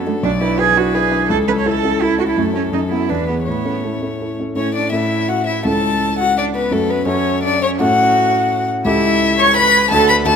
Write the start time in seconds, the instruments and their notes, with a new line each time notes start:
Already playing: grand piano F#2 D4 F#4 A4, violin A4
0.06 cello A3, grand piano D4 A4
0.23 grand piano B1, cello D4, violin D5
0.41 grand piano D4 B4, cello E4
0.59 grand piano E4 B4, cello G#4, violin B4
0.77 grand piano D4 B4, cello F#4
0.94 grand piano E4 B4, cello G#4
1.11 grand piano D4 B4
1.29 grand piano C#2, violin A4, cello A4
1.48 grand piano C#4 A4, cello B4
1.58 cello C#5
1.66 grand piano E4 A4, cello A4
1.84 grand piano C#4 A4
2.02 grand piano E4 A4, cello E4
2.18 grand piano C#4 A4, cello F#4
2.29 cello E4
2.36 grand piano F#2, cello A3
2.54 grand piano C#4 A4, cello C#4
2.72 grand piano F#2, cello D#4
2.90 grand piano B3 A4, cello E4
3.09 grand piano E2, cello D4, violin B4
3.28 cello B3, grand piano B3 G#4
3.45 grand piano A2, cello B3, violin C#5
3.65 grand piano C#4 A4
3.84 cello A3, grand piano E4 A4
4.02 grand piano C#4 A4
4.21 grand piano E4 A4
4.40 grand piano C#4 A4
4.55 grand piano A2 C#4 E4 A4, cello C#4, violin C#5
4.75 cello D4, violin D5
4.92 grand piano A2 C#4 E4 A4, cello E4, violin E5
5.29 cello F#4, violin F#5
5.47 cello E4, violin E5
5.65 grand piano C#2 C#4 E4 A4, cello A4, violin A5
6.19 cello F#4, violin F#5
6.38 cello D4, violin D5
6.56 cello B3, violin B4
6.71 grand piano F#2 C#4 F#4 A4, cello A3, violin A4
6.89 cello B3, violin B4
7.06 grand piano F#2 C#4 F#4 A4, cello C#4, violin C#5
7.43 cello D4, violin D5
7.62 cello C#4, violin C#5
7.80 grand piano A2 C#4 F#4 A4, cello F#4, violin F#5
8.85 grand piano C#2 E4 G4 A4, cello E4, violin E5
9.39 cello C#5, violin C#6
9.57 cello B4, violin B5
9.91 grand piano D2 D4 F#4 A4, cello A4, violin A5
10.08 cello B4, violin B5
10.25 grand piano D2 D4 F#4 A4, cello A4, violin A5